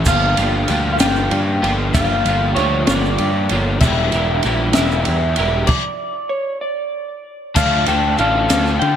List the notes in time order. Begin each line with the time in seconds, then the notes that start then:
0.05 G1 D3 F3 G3 A#3 D4 F4 G4 F5, kick, crash, shaker
0.36 G1 D3 F3 A#3 D4 F4 G4, ride, shaker
0.68 D2 D3 F3 G3 A#3 D4 F4, ride, shaker
0.72 G4
0.93 F5
0.99 G1 D3 F3 A#3 D4 F4 G4 G5, snare, ride, shaker
1.04 G3
1.16 shaker
1.31 G2, ride
1.62 G1 D3 F3 A#3 D4 F4 G4, ride
1.93 G1 D3 F3 G3 A#3 D4 F4 G4 F5, kick, ride, shaker
2.24 G1 F3 A#3 D4 F4 G4, ride, shaker
2.28 D3 A#3
2.54 D2 F3 G3 A#3 D4 G4 C#5, ride, shaker
2.59 D3 A#3 F4
2.87 G1 F3 G3 A#3 D4 F4 G4 D5, snare, ride, shaker
2.91 D3
3.05 shaker
3.18 G2, ride
3.49 G1 D3 F3 A#3 D4 F4 G4 C#5, ride
3.53 A#3
3.80 E1 E3 G3 B3 D4 E4 A#4 E5, kick, crash, shaker
3.85 G4
4.11 E1 B3 D4 E4 G4 A#4, ride, shaker
4.15 G3
4.43 A#1 E3 G3 B3 D4 E4 A#4, ride, shaker
4.47 G4
4.73 E1 B3 E4 G4 A#4 E5, snare, ride, shaker
4.77 E3 G3 D4 E4
4.91 shaker
5.05 E2, ride
5.36 E1 D4 E4 G4 A#4, ride
5.40 G3 B3
5.67 D5, kick, crash
6.29 C#5
6.61 D5
7.55 D2 D3 A3 D4 F4 A4 F5 A5, kick, crash, shaker
7.86 D2 A3 D4 F4 A4 G5, ride, shaker
7.90 D4
8.17 A1 A3 D4 F4 A4 F5, ride, shaker
8.48 D2 D3 A3 D4 F4 A4, snare, ride, shaker
8.67 shaker
8.79 D3 G5, ride